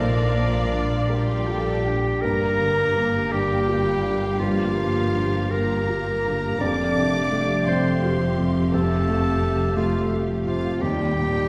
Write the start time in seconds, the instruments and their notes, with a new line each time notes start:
Already playing: double bass section A#1, cello section A#2, felt piano A#2, french horn section F3, violin section D4 F4 F5, clarinet A#4, flute section A#4, viola section D5, cor anglais D5
0.35 felt piano A#3
0.72 felt piano D4
1.08 french horn section G3, violin section F4 G5, clarinet G4, felt piano A#4
1.47 felt piano F4, violin section A4
1.85 felt piano D4, violin section G4
2.21 double bass section G1, cello section G2, felt piano G2, viola section A#3 G4, french horn section A#3, clarinet A#4, violin section F5 A#5
2.60 felt piano D3
2.96 felt piano A#3
3.32 felt piano D3, french horn section G3, clarinet G4, violin section G5
3.68 felt piano F4
4.03 felt piano D3
4.38 felt piano G2, french horn section F3, clarinet F4, violin section F5
4.76 felt piano A#3
5.14 felt piano D3
5.50 french horn section A#3, felt piano A#3, clarinet A#4, violin section A#5
5.89 felt piano F4
6.25 felt piano D3
6.59 double bass section F1, cello section F2, felt piano F2, viola section A3 G4, french horn section D4, clarinet D5, violin section F5 D6
6.97 felt piano C3
7.32 felt piano A3
7.66 felt piano C3, french horn section C4, clarinet C5, violin section C6
8.04 felt piano F4
8.38 felt piano C3
8.72 felt piano F2, french horn section A3, clarinet A4, violin section A5
9.09 felt piano A3
9.42 felt piano C3
9.76 french horn section F3, felt piano A3, clarinet F4, violin section F5
10.12 felt piano F4
10.46 felt piano C3, french horn section F3, clarinet F4, violin section F5
10.80 cello section D#2, double bass section D#2, felt piano D#2, viola section D#3 A#3, french horn section G3, clarinet G4, violin section G5
10.99 viola section G3
11.17 felt piano A#2, viola section A#3
11.35 viola section D#4